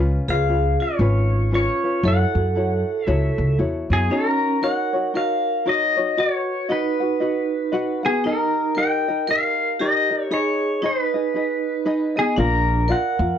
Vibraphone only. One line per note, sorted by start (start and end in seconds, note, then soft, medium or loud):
0.28 0.76 G#4 medium
0.80 1.48 F4 medium
1.54 2.01 F4 medium
2.05 3.56 A4 medium
3.92 4.10 B3 medium
4.11 4.59 C#4 medium
4.63 5.11 A#4 medium
5.16 5.63 A#4 medium
5.68 6.15 F#4 medium
6.18 6.66 F#4 medium
6.71 8.00 D#4 medium
8.05 8.23 B3 medium
8.24 8.72 D#4 medium
8.75 9.23 A#4 medium
9.27 9.76 A#4 medium
9.80 10.27 G4 medium
10.31 10.79 G#4 medium
10.82 12.13 D#4 medium
12.17 12.36 B3 medium
12.36 12.85 D4 medium
12.88 13.37 A#4 medium